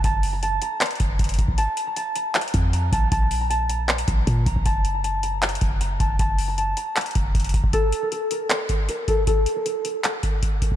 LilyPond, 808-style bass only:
\new Staff \with { instrumentName = "808-style bass" } { \clef bass \time 4/4 \key ges \lydian \tempo 4 = 156 ges,,4. r4 ges,,8 ges,,8 ges,,16 bes,,16 | r2 r8 f,4 bes,,8 | bes,,2~ bes,,8 bes,,8 bes,8 bes,,16 bes,,16 | ges,,2~ ges,,8 ges,,4 ges,,8 |
ges,,4. r4 ges,,8 ges,,8 ges,,16 ges,,16 | r1 | r1 | }